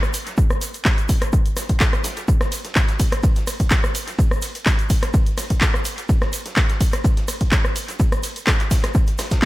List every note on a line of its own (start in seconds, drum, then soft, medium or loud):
0.03 cross-stick medium
0.03 shaker soft
0.14 open hi-hat loud
0.14 shaker medium
0.27 snare soft
0.27 closed hi-hat medium
0.27 shaker soft
0.37 kick loud
0.37 shaker medium
0.50 cross-stick medium
0.50 shaker soft
0.61 open hi-hat loud
0.61 shaker medium
0.61 shaker loud
0.74 closed hi-hat soft
0.74 closed hi-hat medium
0.74 shaker soft
0.85 kick loud
0.85 cross-stick soft
0.85 snare loud
0.85 clap loud
0.85 open hi-hat medium
0.85 shaker medium
0.98 closed hi-hat soft
0.98 shaker soft
1.09 kick medium
1.09 open hi-hat loud
1.09 shaker medium
1.22 cross-stick medium
1.22 closed hi-hat medium
1.22 shaker soft
1.33 kick loud
1.33 shaker medium
1.33 shaker loud
1.46 closed hi-hat medium
1.46 shaker soft
1.57 cross-stick soft
1.57 snare medium
1.57 open hi-hat loud
1.57 shaker loud
1.57 shaker medium
1.69 kick medium
1.69 closed hi-hat medium
1.69 shaker soft
1.80 kick loud
1.80 snare loud
1.80 clap loud
1.80 shaker medium
1.93 cross-stick medium
1.93 closed hi-hat soft
1.93 shaker soft
2.04 snare loud
2.04 open hi-hat loud
2.04 shaker medium
2.04 shaker loud
2.17 snare soft
2.17 closed hi-hat medium
2.17 shaker soft
2.28 kick loud
2.28 shaker medium
2.41 cross-stick medium
2.41 snare soft
2.41 shaker soft
2.52 open hi-hat loud
2.52 ride medium
2.52 shaker medium
2.65 snare soft
2.65 closed hi-hat medium
2.65 shaker soft
2.75 kick loud
2.75 cross-stick soft
2.75 snare loud
2.75 clap loud
2.75 shaker medium
2.88 snare medium
2.88 closed hi-hat soft
2.88 shaker soft
3.00 kick medium
3.00 open hi-hat loud
3.00 ride medium
3.00 shaker medium
3.12 cross-stick medium
3.12 closed hi-hat medium
3.12 shaker soft
3.23 kick loud
3.23 shaker medium
3.23 shaker loud
3.36 snare soft
3.36 closed hi-hat medium
3.36 shaker soft
3.47 cross-stick soft
3.47 open hi-hat loud
3.47 ride medium
3.47 shaker medium
3.47 shaker loud
3.60 kick medium
3.60 closed hi-hat medium
3.60 shaker soft
3.70 kick loud
3.70 snare loud
3.70 clap loud
3.70 shaker medium
3.70 shaker loud
3.84 cross-stick medium
3.84 shaker soft
3.95 open hi-hat loud
3.95 ride medium
3.95 shaker medium
3.95 shaker loud
4.07 snare soft
4.07 closed hi-hat medium
4.07 shaker soft
4.19 kick loud
4.19 shaker medium
4.31 cross-stick medium
4.31 shaker soft
4.42 open hi-hat loud
4.42 ride medium
4.42 shaker medium
4.55 closed hi-hat medium
4.55 closed hi-hat soft
4.55 shaker soft
4.66 kick loud
4.66 cross-stick soft
4.66 snare loud
4.66 clap loud
4.66 open hi-hat medium
4.66 shaker medium
4.79 closed hi-hat medium
4.79 shaker soft
4.90 kick medium
4.90 open hi-hat loud
4.90 ride medium
4.90 shaker medium
5.03 cross-stick medium
5.03 closed hi-hat medium
5.03 shaker soft
5.14 kick loud
5.14 shaker medium
5.26 closed hi-hat medium
5.26 shaker soft
5.38 cross-stick soft
5.38 snare medium
5.38 open hi-hat loud
5.38 ride medium
5.38 shaker medium
5.50 kick medium
5.50 closed hi-hat medium
5.50 shaker soft
5.61 kick loud
5.61 snare loud
5.61 clap loud
5.61 shaker medium
5.61 shaker soft
5.74 cross-stick medium
5.74 shaker soft
5.85 open hi-hat loud
5.85 ride medium
5.85 shaker loud
5.85 shaker medium
5.98 closed hi-hat medium
5.98 shaker soft
6.09 kick loud
6.09 shaker medium
6.21 cross-stick medium
6.21 snare soft
6.21 shaker soft
6.33 open hi-hat loud
6.33 ride medium
6.33 shaker medium
6.46 snare soft
6.46 closed hi-hat medium
6.46 shaker soft
6.56 kick loud
6.56 cross-stick soft
6.56 snare loud
6.56 clap loud
6.56 shaker soft
6.56 shaker medium
6.69 snare medium
6.69 closed hi-hat medium
6.69 shaker soft
6.81 kick medium
6.81 open hi-hat loud
6.81 ride medium
6.81 shaker medium
6.93 cross-stick medium
6.93 closed hi-hat medium
6.93 shaker soft
7.04 kick loud
7.04 shaker loud
7.04 shaker medium
7.17 snare soft
7.17 closed hi-hat medium
7.17 shaker soft
7.28 cross-stick soft
7.28 open hi-hat loud
7.28 ride medium
7.28 shaker medium
7.40 kick medium
7.40 closed hi-hat medium
7.40 shaker soft
7.51 kick loud
7.51 snare loud
7.51 clap loud
7.51 shaker medium
7.64 cross-stick medium
7.64 shaker soft
7.76 open hi-hat loud
7.76 ride medium
7.76 shaker medium
7.88 snare soft
7.88 closed hi-hat medium
7.88 shaker soft
8.00 kick loud
8.00 shaker medium
8.12 cross-stick medium
8.12 closed hi-hat soft
8.12 shaker soft
8.23 open hi-hat loud
8.23 ride medium
8.23 shaker medium
8.36 closed hi-hat medium
8.36 closed hi-hat soft
8.36 shaker soft
8.47 kick loud
8.47 cross-stick soft
8.47 snare loud
8.47 clap loud
8.47 open hi-hat medium
8.47 shaker soft
8.60 clap soft
8.60 closed hi-hat medium
8.60 shaker soft
8.71 kick medium
8.71 snare loud
8.71 open hi-hat loud
8.71 ride medium
8.71 shaker medium
8.84 cross-stick medium
8.84 snare soft
8.84 closed hi-hat medium
8.84 shaker soft
8.94 kick loud
8.94 shaker medium
9.07 closed hi-hat medium
9.07 shaker soft
9.18 cross-stick soft
9.18 snare loud
9.18 open hi-hat loud
9.18 ride medium
9.18 shaker medium
9.31 kick medium
9.31 snare loud
9.31 closed hi-hat medium
9.31 shaker soft
9.31 shaker medium
9.42 clap loud